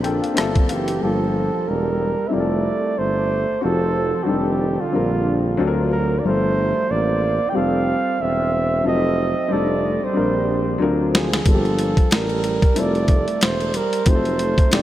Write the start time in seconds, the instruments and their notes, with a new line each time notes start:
Already playing: tuba A#1, trombone D3, flugelhorn F4
0.02 grand piano A#3 C4 D4 F4 A4 G5, closed hi-hat
0.22 tuba G1, grand piano F5, closed hi-hat
0.34 tuba G1, grand piano A#3 C4 D4 F4 A4 E5, closed hi-hat
0.38 cross-stick
0.55 grand piano D5, kick, closed hi-hat
0.64 trombone F3, flugelhorn A4
0.69 tuba F#1, trombone E3, flugelhorn G4, grand piano F5, closed hi-hat
0.88 closed hi-hat
1.00 tuba G1, trombone F3, grand piano G3 A#3 D4 F4 G4, flugelhorn A4
1.53 tuba E1
1.67 tuba E1, trombone G3, flugelhorn A#4
2.20 tuba F1
2.27 grand piano G3 C4, trombone C4, flugelhorn E5
2.32 tuba F1, trombone A3, grand piano E4 F4 G4, flugelhorn D5
2.40 grand piano A4
2.98 tuba G1, trombone A3, flugelhorn C5
3.50 tuba G1
3.61 tuba F1, trombone F3, grand piano C4 D#4 F4 F#4 G#4, flugelhorn A4
3.70 grand piano A4
4.16 tuba F1
4.23 trombone D#3, grand piano G3 C4, flugelhorn F#4
4.27 tuba F1, trombone D#3, grand piano D4 D#4 A4, flugelhorn G4
4.80 tuba A#1, trombone D3, flugelhorn F4
4.91 tuba A#1, grand piano G3 C4 D4 F4 A#4
5.57 tuba D2, grand piano F#3 C4 D4 F4 A4
5.67 grand piano A#4
5.91 trombone F#3, flugelhorn A#4
6.18 trombone A#3, flugelhorn D5
6.23 tuba G1, grand piano F3 G3 D4 F4, trombone A3, flugelhorn C5
6.27 grand piano A4
6.76 tuba A1
6.88 tuba A1, trombone A#3, flugelhorn D5
7.42 tuba F1
7.48 trombone E4, flugelhorn G5
7.52 tuba F1, grand piano G3 C4 F4 G4 A4, trombone C4, flugelhorn F5
8.20 tuba E1, trombone C4, flugelhorn E5
8.82 tuba F1, grand piano F#3 C4 D#4 F4 A4, trombone C4
8.87 flugelhorn D#5
9.37 tuba F1
9.48 tuba F1, grand piano G3 C4 D4 D#4 A4, trombone A3, flugelhorn D5
10.02 tuba A#1, trombone G3, flugelhorn C5
10.13 tuba A#1, grand piano G3 C4 D4 F4 A#4
10.78 tuba D2, grand piano F#3 C4 D4 F4 A#4
11.15 trombone F3, flugelhorn G#4, snare
11.33 snare
11.44 tuba G1, trombone F3, grand piano G3 A#3 D4 F4 G#4, flugelhorn A4, kick, closed hi-hat
11.55 grand piano G4
11.65 closed hi-hat
11.79 closed hi-hat
11.97 tuba A1, kick, closed hi-hat
12.11 tuba A1, trombone G3, flugelhorn A#4, snare, closed hi-hat
12.30 closed hi-hat
12.44 closed hi-hat
12.62 tuba F1, kick, closed hi-hat
12.74 tuba F1, grand piano G3 C4 E4 F4 A4, trombone A3, closed hi-hat
12.79 flugelhorn D5
12.95 closed hi-hat
13.08 kick, closed hi-hat
13.28 tuba E1, closed hi-hat
13.41 tuba E1, trombone A3, flugelhorn C5, snare, closed hi-hat
13.60 closed hi-hat
13.74 trombone G3, flugelhorn A#4, closed hi-hat
13.93 closed hi-hat
14.05 tuba F1, grand piano F#3 C4 D#4 F4 G#4, trombone A3, flugelhorn C5, kick, closed hi-hat
14.15 grand piano A4
14.25 closed hi-hat
14.39 closed hi-hat
14.58 tuba F1, kick, closed hi-hat
14.70 tuba F1, grand piano G3 C4 D4 D#4 G4, trombone A3, flugelhorn D5, snare, closed hi-hat